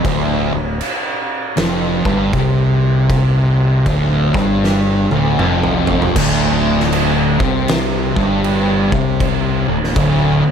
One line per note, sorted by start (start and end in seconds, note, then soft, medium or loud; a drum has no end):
0.04 0.49 D1 loud
0.04 0.51 D2 loud
0.04 kick loud
0.04 crash medium
0.53 0.80 D1 medium
0.53 0.76 D2 medium
0.81 crash medium
1.57 2.03 F1 loud
1.57 2.04 F2 loud
1.57 snare loud
1.57 crash medium
2.05 2.32 G1 loud
2.05 2.33 G2 loud
2.05 kick loud
2.33 3.83 C2 medium
2.33 3.85 C3 loud
2.33 kick loud
2.33 crash soft
3.10 kick loud
3.10 crash medium
3.86 4.31 D1 medium
3.86 4.33 D2 loud
3.86 kick loud
3.86 crash medium
4.34 5.07 G1 medium
4.34 5.09 G2 loud
4.34 kick loud
4.34 snare soft
4.64 snare medium
5.10 5.37 D1 medium
5.10 5.38 D2 loud
5.10 high tom medium
5.38 6.11 F1 loud
5.38 6.14 F2 loud
5.38 mid tom medium
5.63 mid tom medium
5.87 floor tom loud
6.02 floor tom medium
6.16 7.36 D1 loud
6.16 7.38 D2 loud
6.16 kick loud
6.16 crash loud
6.16 crash medium
6.80 snare soft
6.92 crash medium
7.40 8.12 C2 loud
7.40 8.14 C3 loud
7.40 kick loud
7.68 snare loud
7.68 crash medium
8.16 8.88 G1 medium
8.16 8.90 G2 loud
8.16 kick loud
8.44 crash medium
8.92 9.64 C2 medium
8.92 9.66 C3 loud
8.92 kick loud
9.20 kick loud
9.20 crash medium
9.68 9.94 D1 medium
9.68 9.91 D2 medium
9.84 snare soft
9.96 10.41 D1 loud
9.96 10.43 D2 loud
9.96 kick loud
9.96 crash medium